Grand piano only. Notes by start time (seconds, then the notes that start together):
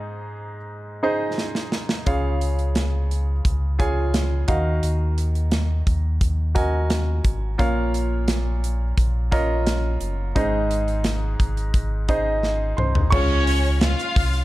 Already playing: G#2 D#4 G#4 C5 D#5
1.03 D#4 G#4 C5 D#5
2.06 C#3 F4 G#4 C#5 F5
3.79 F4 G#4 C#5 G#5
4.48 D#3 F#4 A#4 D#5 F5
6.55 F#4 A#4 D#5 G#5
7.58 A#2 F4 A#4 C#5 F5
9.31 F4 A#4 C#5 D#5
10.35 G#2 D#4 G#4 C5 D#5
12.09 D#4 G#4 C5 D#5
12.77 C5 C6
13.10 G#3 C#4 F4 C#5 C#6